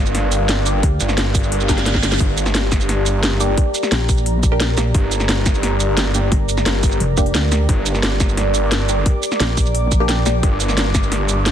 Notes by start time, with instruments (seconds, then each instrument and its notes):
Already playing: detuned saw bass G1, synth stab A#3 D4 G4, ambient pad G4 A#4 D5 F5
0.06 shaker
0.15 snare, closed hi-hat
0.32 closed hi-hat, shaker
0.49 snare, closed hi-hat
0.66 synth stab A#3 D4 G4, closed hi-hat, shaker
0.83 wobble bass D2, kick, closed hi-hat
1.00 detuned saw bass G1, closed hi-hat, shaker
1.09 snare, shaker
1.18 snare, closed hi-hat
1.35 kick, open hi-hat, shaker
1.43 shaker
1.52 detuned saw bass G1, closed hi-hat, reverse cymbal
1.60 shaker
1.69 wobble bass G1, synth stab A#3 D4 G4, kick, snare, closed hi-hat, shaker
1.78 snare, closed hi-hat
1.86 snare, closed hi-hat
1.95 kick, snare
2.03 snare, closed hi-hat, shaker
2.12 snare, closed hi-hat
2.20 detuned saw bass G1, ambient pad A#5, kick, closed hi-hat
2.38 closed hi-hat, shaker
2.46 snare, shaker
2.55 snare, closed hi-hat
2.72 kick, snare, closed hi-hat, shaker
2.80 shaker
2.89 snare, closed hi-hat
3.06 closed hi-hat, shaker
3.23 snare, closed hi-hat
3.40 synth stab A#3 D4 G4, closed hi-hat, shaker
3.57 kick, closed hi-hat
3.75 closed hi-hat, shaker
3.83 snare, shaker
3.92 wobble bass A#1, snare, closed hi-hat
4.09 kick, open hi-hat, shaker
4.17 shaker
4.26 closed hi-hat
4.43 kick, closed hi-hat, shaker
4.52 synth stab A#3 D4 G4
4.60 snare, closed hi-hat
4.77 wobble bass A#1, synth stab A#3 D4 G4, snare, closed hi-hat, shaker
4.94 detuned saw bass G1, kick, closed hi-hat
5.12 closed hi-hat, shaker
5.20 snare, shaker
5.29 snare, closed hi-hat
5.46 kick, snare, closed hi-hat, shaker
5.55 shaker
5.63 snare, closed hi-hat
5.80 closed hi-hat, shaker
5.97 snare, closed hi-hat
6.14 synth stab A#3 D4 G4, closed hi-hat, shaker
6.32 wobble bass G1, kick, closed hi-hat
6.49 closed hi-hat, shaker
6.57 snare, shaker
6.66 detuned saw bass G1, snare, closed hi-hat
6.83 kick, open hi-hat, shaker
6.92 shaker
7.00 wobble bass F1, closed hi-hat
7.17 synth stab A#3 D4 G4, kick, closed hi-hat, shaker
7.26 closed hi-hat
7.35 wobble bass D2, snare, closed hi-hat
7.52 snare, closed hi-hat, shaker
7.69 detuned saw bass G1, ambient pad D6, kick, closed hi-hat
7.86 closed hi-hat, shaker
7.95 snare, shaker
8.03 snare, closed hi-hat
8.20 kick, snare, closed hi-hat, shaker
8.29 shaker
8.37 snare, closed hi-hat
8.55 closed hi-hat, shaker
8.72 snare, closed hi-hat
8.89 synth stab A#3 D4 G4, closed hi-hat, shaker
9.06 kick, closed hi-hat
9.23 closed hi-hat, shaker
9.32 snare, shaker
9.40 wobble bass A#1, snare, closed hi-hat
9.57 kick, open hi-hat, shaker
9.66 shaker
9.75 closed hi-hat
9.92 kick, closed hi-hat, shaker
10.00 synth stab A#3 D4 G4
10.09 snare, closed hi-hat
10.26 wobble bass A#1, synth stab A#3 D4 G4, snare, closed hi-hat, shaker
10.43 detuned saw bass G1, kick, closed hi-hat
10.60 closed hi-hat, shaker
10.69 snare, shaker
10.77 snare, closed hi-hat
10.95 kick, snare, closed hi-hat, shaker
11.03 shaker
11.12 snare, closed hi-hat
11.29 closed hi-hat, shaker
11.46 snare, closed hi-hat